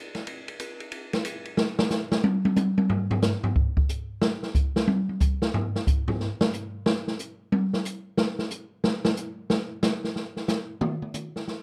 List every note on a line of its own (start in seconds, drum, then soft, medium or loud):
0.15 snare soft
0.15 ride soft
0.27 ride medium
0.48 ride soft
0.60 hi-hat pedal soft
0.60 ride medium
0.80 ride soft
0.92 ride medium
1.13 snare medium
1.13 ride soft
1.25 hi-hat pedal medium
1.25 ride medium
1.45 ride soft
1.57 snare medium
1.79 snare medium
1.90 snare medium
1.90 hi-hat pedal soft
2.12 snare medium
2.24 high tom loud
2.45 high tom medium
2.56 hi-hat pedal soft
2.56 high tom medium
2.78 high tom medium
2.89 floor tom medium
3.11 floor tom medium
3.22 snare medium
3.22 hi-hat pedal medium
3.44 floor tom medium
3.56 kick medium
3.77 kick medium
3.89 hi-hat pedal medium
4.22 snare medium
4.43 snare soft
4.55 kick medium
4.55 hi-hat pedal soft
4.76 snare medium
4.87 high tom medium
5.09 high tom soft
5.20 kick medium
5.20 hi-hat pedal medium
5.42 snare medium
5.54 floor tom medium
5.76 snare soft
5.87 kick medium
5.87 hi-hat pedal medium
6.08 floor tom medium
6.20 snare soft
6.41 snare loud
6.53 hi-hat pedal medium
6.86 snare loud
7.08 snare medium
7.19 hi-hat pedal medium
7.52 high tom medium
7.73 snare medium
7.85 hi-hat pedal medium
8.18 snare loud
8.39 snare medium
8.50 hi-hat pedal medium
8.84 snare loud
9.05 snare medium
9.17 hi-hat pedal medium
9.50 snare loud
9.83 snare medium
9.83 hi-hat pedal medium
10.04 snare soft
10.16 snare soft
10.37 snare soft
10.48 snare loud
10.48 hi-hat pedal medium
10.81 mid tom loud
11.02 mid tom soft
11.14 hi-hat pedal medium
11.14 mid tom soft
11.36 snare soft
11.48 snare soft